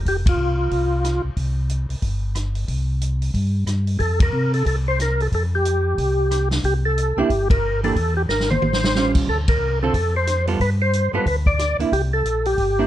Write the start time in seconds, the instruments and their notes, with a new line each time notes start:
0.05 tonewheel organ F1 G4, kick, open hi-hat
0.26 tonewheel organ F4, kick, ride
0.37 tonewheel organ C2
0.71 tonewheel organ C2, kick, open hi-hat
1.04 cross-stick, closed hi-hat
1.24 tonewheel organ C2
1.37 tonewheel organ C2, kick, open hi-hat
1.69 closed hi-hat
1.89 tonewheel organ C2, open hi-hat
2.02 tonewheel organ G1, kick, open hi-hat
2.35 cross-stick, closed hi-hat
2.55 open hi-hat
2.68 tonewheel organ C2, kick, open hi-hat
3.01 closed hi-hat
3.22 open hi-hat
3.34 tonewheel organ G2, kick, open hi-hat
3.66 tonewheel organ G2, cross-stick, closed hi-hat
3.87 open hi-hat
3.99 tonewheel organ F2 G#4 A4, kick, open hi-hat
4.20 tonewheel organ A#4, kick, ride
4.32 tonewheel organ C3
4.54 tonewheel organ A4, open hi-hat
4.66 tonewheel organ C2 A4, kick, open hi-hat
4.88 tonewheel organ C5
5.00 tonewheel organ A#4, cross-stick, closed hi-hat
5.20 tonewheel organ A4, open hi-hat
5.32 tonewheel organ F2 A4, kick, open hi-hat
5.55 tonewheel organ G4
5.65 closed hi-hat
5.97 tonewheel organ C2, kick, open hi-hat
6.31 cross-stick, closed hi-hat
6.51 snare, open hi-hat
6.64 tonewheel organ C2 G4, kick, open hi-hat
6.85 tonewheel organ A4
6.98 closed hi-hat
7.17 tonewheel organ C2 G4, hollow-body jazz guitar A#3 D4 E4
7.29 tonewheel organ G1, kick, open hi-hat
7.50 tonewheel organ A#4, kick, ride
7.84 hollow-body jazz guitar E3 A#3 D4 G4, tonewheel organ A4, open hi-hat
7.95 tonewheel organ E2, kick, open hi-hat
8.17 tonewheel organ G4
8.28 tonewheel organ G#1 A#4, snare
8.40 snare
8.50 tonewheel organ C5, high tom
8.61 tonewheel organ A1, high tom
8.73 snare
8.84 snare
8.95 hollow-body jazz guitar G3 C#4 F4, snare
9.15 kick, crash
9.28 tonewheel organ D2 A4, kick
9.48 tonewheel organ A#4, kick, ride
9.60 tonewheel organ C2
9.83 hollow-body jazz guitar D3 C4 F4 A4, tonewheel organ A4
9.93 tonewheel organ F2 A4, kick, open hi-hat
10.16 tonewheel organ C5
10.27 cross-stick, closed hi-hat
10.47 hollow-body jazz guitar G3 B3 F4 A4, open hi-hat
10.60 tonewheel organ G2 B4, kick, open hi-hat
10.82 tonewheel organ C5
10.93 closed hi-hat
11.13 tonewheel organ G2 B4, hollow-body jazz guitar G3 B3 F4 A4
11.26 tonewheel organ D2 B4, kick, open hi-hat
11.46 tonewheel organ D5, kick
11.59 cross-stick, closed hi-hat
11.78 tonewheel organ D2, hollow-body jazz guitar A#3 D4 E4, open hi-hat
11.92 tonewheel organ C2 G4, kick, open hi-hat
12.13 tonewheel organ A4
12.24 tonewheel organ A#1, closed hi-hat
12.45 tonewheel organ G4, open hi-hat
12.57 tonewheel organ G1, kick, open hi-hat
12.79 hollow-body jazz guitar A#3 D4 E4